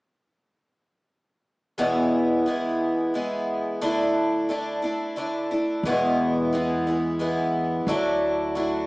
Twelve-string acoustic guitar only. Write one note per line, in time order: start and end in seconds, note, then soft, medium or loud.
1.78 2.46 E2 medium
1.78 2.46 B2 medium
1.78 2.45 E3 medium
1.78 2.46 G#3 medium
1.78 2.46 B3 medium
1.78 2.48 E4 medium
2.46 3.14 E3 soft
2.46 3.14 G#3 soft
2.46 3.14 B3 soft
2.46 3.15 E4 soft
3.14 3.81 E3 soft
3.14 3.81 G#3 medium
3.14 3.82 B3 soft
3.14 3.83 E4 soft
3.81 4.48 D3 medium
3.81 4.48 A3 medium
3.81 4.49 D4 medium
3.81 4.51 E4 medium
4.49 4.83 D3 soft
4.49 4.83 A3 soft
4.49 4.83 D4 soft
4.49 4.81 E4 soft
4.82 5.16 A3 soft
4.82 5.17 D4 soft
4.82 5.16 E4 soft
5.16 5.50 D3 soft
5.16 5.51 A3 medium
5.16 5.51 D4 soft
5.16 5.50 E4 soft
5.51 5.86 A3 soft
5.51 5.85 D4 soft
5.51 5.84 E4 soft
5.85 6.52 E2 medium
5.85 6.53 B2 medium
5.85 6.52 E3 medium
5.85 6.52 G#3 medium
5.85 6.53 B3 medium
5.85 6.54 E4 medium
6.53 6.86 E3 medium
6.53 6.86 G#3 soft
6.53 6.86 B3 medium
6.53 6.86 E4 medium
6.87 7.18 E3 soft
6.87 7.18 G#3 soft
6.87 7.20 B3 soft
6.87 7.20 E4 soft
7.19 7.88 E3 soft
7.19 7.87 G#3 soft
7.19 7.88 B3 medium
7.19 7.89 E4 medium
7.88 8.55 D3 medium
7.88 8.54 F#3 medium
7.88 8.55 A3 medium
7.88 8.55 D4 medium
7.88 8.55 E4 medium
8.55 8.87 F#3 soft
8.55 8.87 A3 soft
8.55 8.87 D4 soft
8.55 8.87 E4 medium